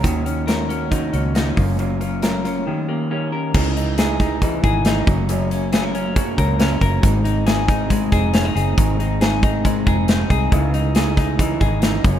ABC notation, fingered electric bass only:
X:1
M:4/4
L:1/8
Q:1/4=138
K:Db
V:1 name="Fingered electric bass" clef=bass
E,,4- E,, D,,2 G,,,- | G,,,4- G,,, z3 | D,,4- D,, A,,,2 G,,,- | G,,,4- G,,, D,,2 G,,, |
A,,,4- A,,, F,,,2 G,,, | A,,,4- A,,, F,,,2 C,, | D,,4- D,, A,,,2 G,,, |]